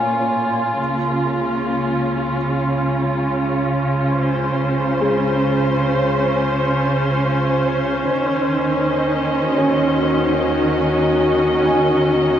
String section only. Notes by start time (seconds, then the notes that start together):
Already playing: A#2 A#3 F4 C#5
0.78 C#3
1.42 C#4
4.04 C5
8.11 D#3
8.72 D#5
9.40 F#4